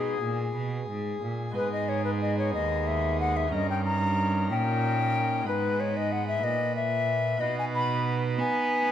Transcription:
Already playing: B2 G#3 B3 D#4 G#4
0.21 A#2
0.55 B2
0.89 G#2
1.22 A#2
1.50 G#3 B3 D#4
1.55 G#2 G#4 B4
1.72 D#5
1.89 C#5
2.05 B4
2.22 D#5
2.39 C#5
2.54 D#2 D#5
2.87 E5
3.20 F#5
3.36 E5
3.49 C#4 D#4 A#4
3.53 G2 D#5
3.70 G5
3.85 A#5
4.51 A#2 G5
5.42 G#3 B3 D#4
5.46 G#2 B4
5.80 C#5
5.97 D#5
6.12 F#5
6.28 E5
6.44 A#2 D#5
6.76 E5
7.38 B2 B3 D#4 B4 D#5
7.42 B2
7.59 G#5
7.75 B5
8.39 B3 G#5

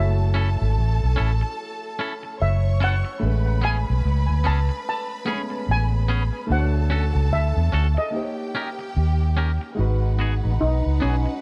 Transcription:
Already playing: F#1 A3 E4 F#4 A4 C#5 E5 A5
0.34 C#4 E4 A4
0.62 G#1
0.78 A1
1.04 B1
1.16 A1 C#4 E4 A4
1.41 muted clean electric guitar stroke
1.99 C#4 E4 A4
2.23 muted clean electric guitar stroke
2.39 F#1 C#5 E5 C#6
2.80 C#4 E4 A4 F#5
3.05 muted clean electric guitar stroke
3.20 A1 G#3 A3 C#4 B4 B5
3.25 B4
3.62 B3 C#4 G#4 G#5
3.90 B1
4.05 C#2
4.29 D2
4.44 C#2 B3 C#4 G#4 A5
4.69 muted clean electric guitar stroke
4.89 A5
5.25 G#3 A3 B3 C#4 G#4 B4
5.32 C#4
5.50 muted clean electric guitar stroke
5.69 A1 G#5
6.08 B3 C#4 G#4
6.47 D2 A3 D4 F#4 A5
6.51 A4 C5 F#5
6.59 C#5
6.90 C#4 F#4 A4
7.15 C#2
7.32 D2 E5
7.57 E2
7.72 D2 C#4 F#4 A4
7.97 D#5, muted clean electric guitar stroke
8.11 A#3 D#4 G4 G5
8.16 C5
8.23 C#5
8.55 C#4 G4 A#4
8.79 muted clean electric guitar stroke
8.96 D#2
9.37 C#4 G4 A#4
9.61 muted clean electric guitar stroke
9.75 G#3 D#4 F#4 B4 F#5
9.79 G#1 B4
10.19 B3 F#4 G#4
10.45 A1
10.61 B1 D#4
10.86 C#2
11.00 B1 B3 C#4 F#4 G#4
11.26 muted clean electric guitar stroke

